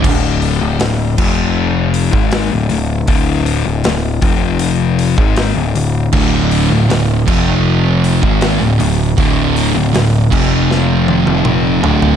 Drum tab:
CC |x-----x---------|----------------|x-----x---------|------x---------|
HH |--o-o-----o-o-o-|o-o-o-o-o-o-o-o-|--o-o-----o-o-o-|o-o-o-----------|
SD |----o-------o---|----o-------o---|----o-------o---|----o---o-------|
T1 |----------------|----------------|----------------|----------oo----|
T2 |----------------|----------------|----------------|------------o---|
FT |----------------|----------------|----------------|--------------oo|
BD |o-----o----o----|o-----o----o----|o-----o----o----|o-----o---------|